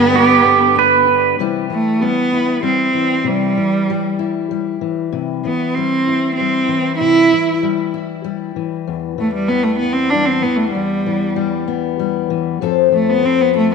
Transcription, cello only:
0.00 1.06 B3 loud
1.72 2.03 A3 medium
2.02 2.64 B3 medium
2.65 3.27 C4 medium
3.26 4.19 G3 medium
5.45 5.76 B3 medium
5.74 6.35 C4 medium
6.36 6.95 C4 medium
6.98 7.57 E4 loud
9.20 9.33 A3 medium
9.34 9.50 G3 medium
9.48 9.65 B3 medium
9.63 9.78 A3 medium
9.78 9.94 B3 medium
9.93 10.11 C4 medium
10.10 10.27 D4 medium
10.25 10.44 C4 medium
10.42 10.58 B3 medium
10.56 10.70 A3 medium
10.71 11.62 G3 medium
12.94 13.11 A3 medium
13.10 13.27 B3 medium
13.25 13.43 C4 medium
13.41 13.55 B3 medium
13.57 13.70 A3 medium

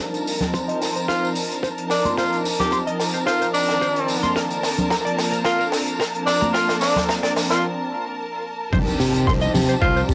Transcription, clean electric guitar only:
0.54 0.59 C6 medium
0.68 0.78 D#5 medium
0.96 1.00 C5 medium
1.09 1.13 C5 medium
1.23 1.27 C5 medium
1.63 1.68 C5 medium
2.05 2.15 C6 medium
2.18 2.22 C5 medium
2.73 2.77 C6 medium
2.87 2.97 D#5 medium
3.14 3.18 C5 medium
3.27 3.31 C5 loud
3.41 3.45 C5 medium
3.81 3.86 C5 medium
4.23 4.33 C6 medium
4.36 4.40 A#4 medium
4.90 4.95 A#5 medium
5.05 5.15 D5 medium
5.32 5.36 A#4 medium
5.45 5.49 A#4 loud
5.59 5.63 A#4 medium
6.00 6.04 A#4 medium
6.41 6.51 A#5 medium
6.54 6.59 A#4 loud
7.09 7.13 A#5 medium
7.23 7.33 D5 loud
7.51 7.54 A#4 medium
8.73 8.77 C5 loud
9.27 9.32 C6 medium
9.41 9.51 D#5 loud
9.69 9.73 C5 medium
9.82 9.86 C5 loud
9.96 10.00 C5 medium

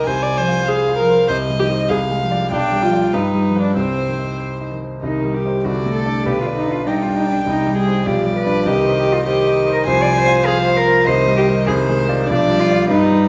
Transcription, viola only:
0.07 0.24 C5 medium
0.23 0.39 D5 medium
0.38 0.70 C5 medium
0.68 0.98 G#4 medium
0.98 1.28 A#4 medium
1.28 1.36 C5 medium
1.59 1.67 G4 medium
1.90 1.98 G#4 medium
2.52 2.84 D4 medium
2.83 3.15 F4 medium
3.14 3.61 D#4 medium
3.61 3.77 D4 medium
3.77 4.39 C4 medium
5.03 5.61 D#3 soft
5.65 6.25 D3 soft
6.26 6.86 D3 soft
6.87 7.46 G3 soft
7.47 8.06 G3 soft
8.07 8.69 F3 medium
8.67 9.26 D#3 medium
9.27 9.88 D#3 medium
9.87 10.47 F3 medium
10.48 11.10 F3 medium
11.08 12.31 D#3 medium
12.29 12.92 F3 medium
12.91 13.28 G3 medium

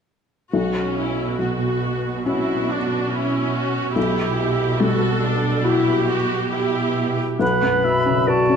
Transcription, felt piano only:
0.53 3.93 B1 soft
1.39 2.77 F#3 soft
2.26 3.93 C#4 soft
2.26 3.93 F#4 soft
3.96 7.37 B1 soft
4.80 6.16 G3 soft
5.64 7.37 E4 soft
5.64 7.37 F#4 soft
7.40 8.56 B1 soft
7.62 7.98 F#2 soft
7.85 8.20 F#3 soft
8.06 8.41 C#4 soft
8.27 8.56 F#4 soft
8.49 8.56 C#4 soft

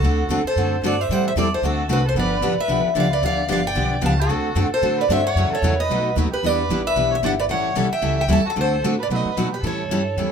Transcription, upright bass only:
0.02 0.28 D2 medium
0.29 0.43 E2 medium
0.44 muted upright bass stroke soft
0.56 0.81 F#2 medium
0.82 1.08 G2 medium
1.09 1.35 A2 medium
1.35 1.61 E2 medium
1.62 1.88 D2 medium
1.89 2.14 C2 medium
2.15 2.41 G1 medium
2.41 2.56 A1 medium
2.58 muted upright bass stroke soft
2.68 2.83 B1 medium
2.84 muted upright bass stroke soft
2.95 3.21 C#2 medium
3.22 3.48 D2 medium
3.48 3.75 G1 medium
3.76 4.02 B1 medium
4.02 4.28 C#2 medium
4.29 4.55 D2 medium
4.55 4.70 F#2 loud
4.70 muted upright bass stroke soft
4.82 5.08 A2 medium
5.09 5.35 G2 loud
5.35 5.50 F#2 medium
5.51 muted upright bass stroke soft
5.62 5.88 E2 medium
5.89 6.15 B1 medium
6.16 6.30 D#2 medium
6.32 muted upright bass stroke soft
6.43 6.68 E2 medium
6.69 6.95 A1 medium
6.95 7.22 B1 medium
7.22 7.48 G1 medium
7.49 7.75 A1 medium
7.76 7.90 B1 medium
7.91 muted upright bass stroke soft
8.02 8.27 C#2 medium
8.28 8.43 D#2 loud
8.44 muted upright bass stroke soft
8.56 8.81 D2 medium
8.82 9.08 A2 medium
9.09 9.24 B2 medium
9.25 muted upright bass stroke soft
9.37 9.62 A#2 medium
9.63 9.89 A2 medium
9.89 10.15 G2 medium
10.16 10.32 E2 medium

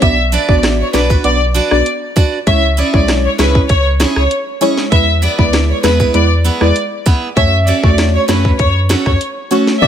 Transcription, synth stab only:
0.02 0.16 B3 medium
0.02 0.16 D4 medium
0.02 0.17 F#4 medium
0.02 0.17 D5 loud
0.48 0.90 B3 medium
0.48 0.90 D4 medium
0.48 0.90 F#4 medium
0.48 0.91 D5 medium
0.93 1.22 B3 medium
0.93 1.22 D4 medium
0.93 1.22 F#4 medium
0.93 1.22 D5 medium
1.24 1.39 B3 medium
1.24 1.39 D4 medium
1.24 1.39 F#4 medium
1.24 1.39 D5 loud
1.71 1.84 B3 medium
1.71 1.84 D4 medium
1.71 1.84 F#4 medium
1.71 1.84 D5 medium
2.47 2.61 G#3 loud
2.47 2.61 C#4 medium
2.47 2.62 E4 medium
2.47 2.62 C#5 loud
2.94 3.35 G#3 medium
2.94 3.35 C#4 medium
2.94 3.35 E4 medium
2.94 3.36 C#5 medium
3.39 3.67 G#3 medium
3.39 3.67 C#4 medium
3.39 3.67 E4 medium
3.39 3.67 C#5 medium
4.61 4.89 G#3 medium
4.61 4.90 C#4 medium
4.61 4.90 E4 medium
4.61 4.90 C#5 medium
4.91 5.06 G#3 loud
4.91 5.06 B3 medium
4.91 5.06 E4 medium
4.91 5.06 B4 loud
5.38 5.80 G#3 medium
5.38 5.80 B3 medium
5.38 5.80 E4 medium
5.38 5.80 B4 medium
5.83 6.12 G#3 medium
5.83 6.12 B3 medium
5.83 6.12 E4 medium
5.83 6.12 B4 medium
6.14 6.29 G#3 medium
6.14 6.29 B3 medium
6.14 6.29 E4 medium
6.14 6.29 B4 loud
6.61 6.74 G#3 medium
6.61 6.74 B3 medium
6.61 6.74 E4 medium
6.61 6.74 B4 medium
7.36 7.51 A3 loud
7.36 7.51 C#4 medium
7.36 7.51 F#4 medium
7.36 7.51 C#5 loud
7.83 8.25 A3 medium
7.83 8.25 C#4 medium
7.83 8.25 F#4 medium
7.83 8.25 C#5 medium
8.28 8.57 A3 medium
8.28 8.57 C#4 medium
8.28 8.57 F#4 medium
8.28 8.57 C#5 medium
9.51 9.79 A3 medium
9.51 9.79 C#4 medium
9.51 9.79 F#4 medium
9.51 9.79 C#5 medium
9.81 9.87 B3 loud
9.81 9.87 D4 medium
9.81 9.87 F#4 medium
9.81 9.87 D5 loud

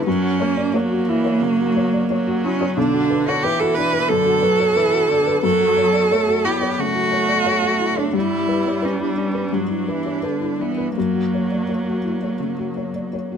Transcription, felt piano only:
0.07 1.38 F#2 medium
0.23 0.50 F#4 soft
0.40 0.67 C#5 medium
0.57 0.74 D5 soft
0.74 1.01 C#5 medium
0.91 1.18 F#4 medium
1.09 1.36 E4 medium
1.25 1.52 C#5 medium
1.41 1.69 C#3 soft
1.60 1.86 F#4 soft
1.76 2.03 C#5 medium
1.94 2.10 D5 soft
2.10 2.37 C#5 medium
2.27 2.54 F#4 medium
2.44 2.70 E4 medium
2.61 2.77 C#5 medium
2.77 4.06 B1 medium
2.94 3.20 F#4 medium
3.10 3.37 B4 medium
3.27 3.43 C#5 soft
3.44 3.70 B4 medium
3.61 3.87 F#4 medium
3.78 4.03 D4 medium
3.93 4.19 B4 medium
4.10 4.36 F#2 soft
4.26 4.53 F#4 medium
4.43 4.69 B4 medium
4.60 4.76 C#5 soft
4.76 5.03 B4 medium
4.93 5.20 F#4 medium
5.11 5.37 D4 medium
5.27 5.44 B4 medium
5.43 6.75 F#2 medium
5.60 5.87 F#4 medium
5.77 6.04 C#5 medium
5.93 6.11 D5 soft
6.11 6.38 C#5 medium
6.28 6.55 F#4 medium
6.45 6.72 E4 medium
6.61 6.89 C#5 medium
6.79 7.06 C#3 soft
6.95 7.23 F#4 soft
7.12 7.40 C#5 medium
7.29 7.46 D5 soft
7.45 7.73 C#5 medium
7.62 7.90 F#4 soft
7.79 8.07 E4 soft
7.96 8.14 C#5 medium
8.13 9.48 G2 medium
8.30 8.59 E4 soft
8.49 8.76 B4 soft
8.66 8.83 C#5 soft
8.82 9.11 B4 medium
9.00 9.28 E4 soft
9.16 9.45 D4 soft
9.35 9.63 B4 soft
9.52 10.92 G2 soft
9.70 9.98 E4 soft
9.88 10.17 B4 soft
10.05 10.23 C#5 soft
10.23 10.52 B4 soft
10.41 10.70 E4 soft
10.60 10.89 D4 soft
10.78 10.96 B4 soft
10.98 12.39 F#2 soft
11.15 11.44 F#4 soft
11.34 11.63 C#5 soft
11.52 11.70 D5 soft
11.69 11.98 C#5 soft
11.87 12.16 F#4 soft
12.05 12.34 E4 soft
12.23 12.52 C#5 soft
12.40 12.70 C#3 soft
12.59 12.88 F#4 soft
12.77 13.06 C#5 soft
12.95 13.14 D5 soft
13.13 13.37 C#5 soft
13.32 13.37 F#4 soft

